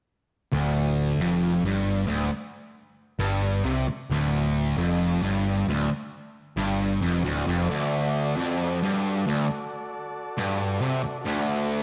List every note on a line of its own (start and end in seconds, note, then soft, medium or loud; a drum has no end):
0.52 1.15 D1 medium
0.52 1.21 D2 medium
1.17 1.59 F1 medium
1.21 1.64 F2 medium
1.62 2.04 G1 medium
1.62 2.06 G2 medium
2.07 2.29 D1 medium
2.07 2.29 D2 loud
3.19 3.61 G1 medium
3.19 3.64 G2 loud
3.65 3.85 C2 medium
3.65 3.86 C3 loud
3.88 muted distorted electric guitar stroke medium
4.09 4.72 D1 medium
4.09 4.77 D2 loud
4.77 5.18 F1 medium
4.77 5.21 F2 medium
5.21 5.63 G1 medium
5.21 5.66 G2 loud
5.67 5.87 D1 medium
5.67 5.89 D2 loud
6.56 6.97 G1 medium
6.56 7.00 G2 medium
7.01 7.21 F1 medium
7.01 7.22 F2 medium
7.23 7.43 D1 medium
7.23 7.45 D2 loud
7.46 7.66 F1 medium
7.46 7.67 F2 medium
7.64 11.17 F#4 medium
7.64 11.18 A4 medium
7.64 11.18 D5 medium
7.70 8.35 D2 medium
8.36 8.79 F2 loud
8.83 9.24 G2 loud
9.27 9.46 D2 loud
10.38 10.80 G2 loud
10.81 11.01 C3 loud
11.04 muted distorted electric guitar stroke medium
11.21 11.83 F#4 medium
11.21 11.83 A4 medium
11.21 11.83 D5 medium
11.25 11.83 D2 loud